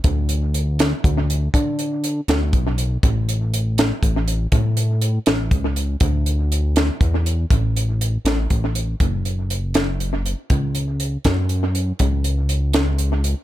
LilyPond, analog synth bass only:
\new Staff \with { instrumentName = "Analog synth bass" } { \clef bass \time 6/8 \key fis \minor \tempo 4. = 80 d,2 d,4 | d4. d,8 b,,4 | a,,2 a,,4 | a,4. a,,8 cis,4 |
d,2 e,4 | a,,4. a,,8 a,,4 | fis,,2. | cis,4. fis,4. |
cis,2. | }